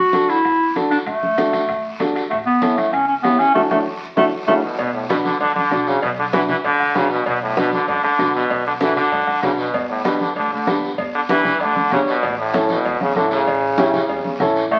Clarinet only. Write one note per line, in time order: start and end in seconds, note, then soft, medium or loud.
0.00 0.31 F#4 medium
0.29 0.76 E4 loud
0.91 0.98 D4 medium
1.07 1.96 A3 medium
2.30 2.37 A3 medium
2.46 2.79 B3 medium
2.77 2.94 A3 medium
2.92 3.07 C#4 medium
3.08 3.15 C#4 medium
3.23 3.41 B3 medium
3.39 3.54 C#4 loud
3.54 3.62 A3 medium
3.71 3.78 A3 medium
4.17 4.24 A3 medium
4.47 4.55 A3 medium
14.72 14.79 A3 medium